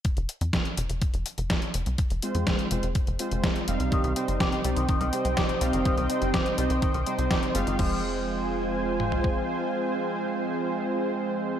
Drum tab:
CC |----------------|----------------|----------------|----------------|
HH |xxxxxxxxxxxxxxxx|xxxxxxxxxxxxxxxx|xxxxxxxxxxxxxxxx|xxxxxxxxxxxxxxxx|
SD |----o-------o---|----o-------o---|----o-------o---|----o-------o---|
T2 |----------------|----------------|----------------|----------------|
FT |----------------|----------------|----------------|----------------|
BD |o---o---o---o---|o---o---o---o---|o---o---o---o---|o---o---o---o---|

CC |x---------------|----------------|
HH |----------------|----------------|
SD |----------------|----------------|
T2 |----------o-----|----------------|
FT |-----------o----|----------------|
BD |o-----------o---|----------------|